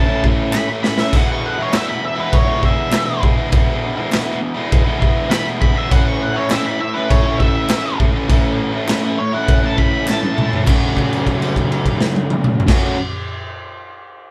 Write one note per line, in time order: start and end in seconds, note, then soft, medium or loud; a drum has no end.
0.00 0.22 A5 loud
0.06 0.24 C#4 medium
0.06 0.27 E4 medium
0.11 0.23 A3 medium
0.23 0.52 E3 medium
0.23 0.52 A3 medium
0.23 0.53 C#4 medium
0.23 kick medium
0.27 0.55 E4 medium
0.51 0.97 A2 loud
0.51 0.83 E3 medium
0.51 0.70 A3 loud
0.51 0.69 C#4 loud
0.51 0.67 B5 loud
0.51 snare medium
0.51 clap loud
0.56 0.68 E4 loud
0.68 0.83 A3 medium
0.68 0.84 C#4 medium
0.68 0.86 E4 medium
0.83 1.14 E3 medium
0.83 1.00 A3 medium
0.83 0.99 C#4 medium
0.83 0.97 E4 medium
0.83 0.98 B5 loud
0.83 snare loud
0.98 1.12 C#4 medium
0.98 1.16 E4 medium
0.98 1.16 E5 loud
0.98 snare loud
1.02 1.13 A3 medium
1.13 1.71 E2 loud
1.13 1.71 B2 loud
1.13 1.61 E3 medium
1.13 1.61 G#3 loud
1.13 1.60 B3 loud
1.13 1.29 F#5 medium
1.13 kick loud
1.13 splash medium
1.13 crash medium
1.17 1.58 E4 loud
1.32 1.45 C#6 medium
1.46 1.59 F#5 medium
1.58 1.72 E3 medium
1.58 1.74 G#3 medium
1.58 1.74 B3 medium
1.58 1.75 E4 medium
1.62 1.75 C#5 medium
1.71 2.89 E2 medium
1.71 2.18 B2 loud
1.71 1.89 E3 medium
1.71 1.88 G#3 loud
1.71 1.88 B3 loud
1.71 snare loud
1.71 clap loud
1.71 crash medium
1.75 1.85 E4 loud
1.75 1.90 E5 loud
1.86 2.01 E3 medium
1.86 2.01 G#3 medium
1.86 2.02 B3 medium
1.86 2.02 E4 medium
1.86 2.03 B5 loud
2.02 2.19 E5 loud
2.02 muted overdriven electric guitar stroke medium
2.15 2.46 G#3 medium
2.15 2.45 B3 medium
2.15 2.44 E4 medium
2.19 2.47 E3 medium
2.19 2.33 B4 medium
2.33 2.63 C#5 loud
2.33 kick loud
2.33 crash medium
2.44 2.58 E3 medium
2.44 2.59 G#3 medium
2.44 2.59 B3 medium
2.44 2.61 E4 medium
2.58 2.92 E3 medium
2.58 2.91 G#3 medium
2.58 2.91 B3 medium
2.58 2.92 E4 medium
2.63 3.22 E5 loud
2.63 kick medium
2.90 3.36 E2 loud
2.90 3.36 B2 loud
2.90 3.08 E3 loud
2.90 3.07 G#3 loud
2.90 3.05 B3 loud
2.90 3.04 E4 loud
2.90 snare loud
2.90 clap loud
2.90 crash medium
3.04 3.21 G#3 medium
3.04 3.22 B3 medium
3.04 3.24 E4 medium
3.08 3.19 E3 medium
3.20 3.39 E3 medium
3.20 3.37 G#3 medium
3.20 3.36 B3 medium
3.20 kick medium
3.24 3.36 E4 medium
3.36 3.50 E3 medium
3.36 3.50 G#3 medium
3.36 3.51 B3 medium
3.36 3.53 E4 medium
3.49 4.09 E2 medium
3.49 4.11 B2 loud
3.49 3.99 E3 loud
3.49 3.97 G#3 loud
3.49 3.95 B3 loud
3.49 3.95 E4 loud
3.49 kick loud
3.49 crash medium
3.95 4.12 G#3 medium
3.95 4.12 B3 medium
3.95 4.13 E4 medium
4.00 4.12 E3 medium
4.10 4.56 E2 medium
4.10 4.57 B2 loud
4.10 4.26 E3 loud
4.10 4.25 G#3 loud
4.10 4.24 B3 loud
4.10 4.22 E4 loud
4.10 snare loud
4.10 clap loud
4.10 crash medium
4.23 4.40 E3 medium
4.23 4.40 G#3 medium
4.23 4.39 B3 medium
4.23 4.41 E4 medium
4.40 muted overdriven electric guitar stroke medium
4.54 4.85 G#3 medium
4.54 4.85 B3 medium
4.54 4.84 E4 medium
4.58 4.87 E3 medium
4.72 kick loud
4.72 crash medium
4.84 4.98 E3 medium
4.84 4.99 G#3 medium
4.84 5.00 B3 medium
4.84 5.02 E4 medium
4.98 5.31 E3 medium
4.98 5.31 G#3 medium
4.98 5.32 B3 medium
4.98 kick medium
5.03 5.33 E4 medium
5.29 5.75 E2 loud
5.29 5.75 B2 loud
5.29 5.47 E3 loud
5.29 5.46 G#3 loud
5.29 5.44 B3 loud
5.29 5.43 E4 loud
5.29 5.45 B5 loud
5.29 snare loud
5.29 clap loud
5.29 crash medium
5.44 5.59 G#3 medium
5.44 5.59 B3 medium
5.44 5.61 E4 medium
5.48 5.58 E3 medium
5.59 5.75 E3 medium
5.59 5.73 G#3 medium
5.59 5.72 B3 medium
5.59 5.72 E4 medium
5.59 5.75 B5 loud
5.59 kick loud
5.72 5.88 E3 medium
5.72 5.89 G#3 medium
5.72 5.88 B3 medium
5.72 5.91 E4 medium
5.78 5.92 E5 loud
5.87 6.49 A2 loud
5.87 6.49 E3 loud
5.87 6.37 A3 loud
5.87 6.35 C#4 loud
5.87 kick loud
5.92 6.33 E4 loud
5.92 6.06 F#5 loud
5.92 crash medium
6.08 6.21 C#6 medium
6.22 6.36 F#5 medium
6.34 6.51 A3 medium
6.34 6.52 C#4 medium
6.34 6.52 E4 medium
6.34 6.50 C#5 loud
6.49 7.68 A2 loud
6.49 6.79 E3 loud
6.49 6.68 A3 loud
6.49 6.67 C#4 loud
6.49 6.65 E4 loud
6.49 6.66 E5 loud
6.49 snare loud
6.49 clap loud
6.49 crash medium
6.65 6.79 A3 medium
6.65 6.80 C#4 medium
6.65 6.81 E4 medium
6.65 6.80 B5 medium
6.79 6.95 E5 loud
6.79 muted overdriven electric guitar stroke medium
6.94 7.25 C#4 medium
6.94 7.21 E4 medium
6.94 7.09 B4 loud
6.98 7.27 A3 medium
7.11 7.39 C#5 medium
7.11 kick loud
7.11 crash medium
7.23 7.42 C#4 medium
7.23 7.42 E4 medium
7.27 7.40 A3 medium
7.39 7.69 E3 medium
7.39 7.70 A3 medium
7.39 7.70 C#4 medium
7.39 7.98 E5 loud
7.39 kick medium
7.44 7.71 E4 medium
7.68 8.14 A2 loud
7.68 7.95 E3 loud
7.68 7.87 A3 loud
7.68 7.85 C#4 loud
7.68 snare loud
7.68 clap loud
7.68 crash medium
7.72 7.81 E4 loud
7.82 7.99 C#4 medium
7.82 7.99 E4 medium
7.87 7.98 A3 medium
7.96 8.28 E3 medium
7.96 8.15 A3 medium
7.96 8.13 C#4 medium
7.96 8.10 E4 medium
7.96 kick medium
8.12 8.30 C#4 medium
8.12 8.31 E4 medium
8.16 8.28 A3 medium
8.28 8.86 A2 medium
8.28 8.87 E3 loud
8.28 8.75 A3 loud
8.28 8.72 C#4 medium
8.28 kick loud
8.28 crash medium
8.32 8.70 E4 loud
8.72 8.89 C#4 medium
8.72 8.89 E4 medium
8.76 8.88 A3 medium
8.87 9.33 A2 loud
8.87 9.18 E3 loud
8.87 9.05 A3 loud
8.87 9.03 C#4 loud
8.87 9.01 E4 loud
8.87 snare loud
8.87 clap loud
8.87 crash medium
9.03 9.17 A3 medium
9.03 9.18 C#4 medium
9.03 9.18 E4 medium
9.18 9.33 C#5 loud
9.18 muted overdriven electric guitar stroke medium
9.33 9.63 A3 medium
9.33 9.62 C#4 medium
9.33 9.60 E4 medium
9.33 9.63 F#5 loud
9.48 kick loud
9.48 crash medium
9.61 9.75 A3 medium
9.61 9.77 C#4 medium
9.61 9.78 E4 medium
9.66 9.79 A5 loud
9.75 10.04 E3 medium
9.75 10.05 A3 medium
9.75 10.06 C#4 medium
9.75 10.08 E4 medium
9.75 10.07 B5 medium
9.75 kick medium
10.05 10.51 A2 loud
10.05 10.32 E3 loud
10.05 10.23 A3 loud
10.05 10.21 C#4 loud
10.05 10.65 A5 loud
10.05 clap loud
10.09 10.18 E4 loud
10.09 snare medium
10.20 10.35 C#4 medium
10.20 10.36 E4 medium
10.20 high tom medium
10.24 10.34 A3 medium
10.33 10.63 E3 medium
10.33 10.52 A3 medium
10.33 10.49 C#4 medium
10.33 10.47 E4 medium
10.38 mid tom loud
10.48 10.64 C#4 medium
10.48 10.63 E4 medium
10.53 10.64 A3 medium
10.53 floor tom medium
10.63 12.66 F#2 medium
10.63 12.67 C#3 loud
10.63 12.69 F#3 loud
10.63 12.68 A3 loud
10.63 12.70 C#4 loud
10.63 12.70 F#4 loud
10.67 kick loud
10.67 clap medium
10.67 crash loud
10.97 kick medium
10.97 crash soft
11.13 crash medium
11.27 kick medium
11.27 crash medium
11.42 crash medium
11.56 kick medium
11.56 crash medium
11.72 crash medium
11.86 kick medium
11.86 crash medium
12.01 snare loud
12.16 high tom medium
12.30 mid tom loud
12.44 mid tom loud
12.60 floor tom loud
12.67 12.95 F#2 loud
12.67 12.95 C#3 loud
12.67 12.96 F#3 loud
12.67 12.95 A3 loud
12.67 12.96 C#4 loud
12.67 12.97 F#4 loud
12.67 kick loud
12.67 snare loud
12.67 crash loud